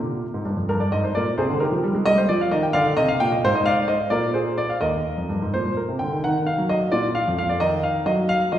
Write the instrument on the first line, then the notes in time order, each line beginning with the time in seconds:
grand piano
Already playing: G4 A#4
0.00 A#2
0.34 G#2
0.45 G2
0.57 F2
0.69 G2 A#4
0.80 D5
0.92 G#2 D#5
1.04 C5
1.15 A#2 A#4 D5
1.38 C3 G#4 C5
1.49 D3
1.60 D#3 G4 A#4
1.72 F3
1.84 G3
1.95 G#3
2.06 G3 D#5
2.18 C5
2.29 F3 D5
2.41 F5
2.51 D#3 D#5
2.63 G5
2.73 D3 D5 F5
2.97 C3 D#5
3.08 F5
3.20 A#2 G5
3.32 D#5
3.44 G#2 C5
3.55 D#5
3.66 D5 F5
3.88 C5 D#5
4.10 A#2 A#4 D5
4.34 G#4 C5
4.58 D5
4.70 F5
4.81 D#2 A#4 D#5
5.18 F2
5.29 G2
5.42 G#2
5.54 A#2 C5
5.77 A#4
5.89 C3
5.99 D3 G5
6.12 D#3
6.24 D#3 D#4 F#5
6.46 F5
6.58 F#3
6.69 D#5
6.92 A#2 F4 D5
7.15 F5
7.28 F2
7.38 F5
7.49 D5
7.60 D#3 D#4 D#5
7.83 F5
8.06 F#3 D#5
8.29 F5
8.52 F3 D#5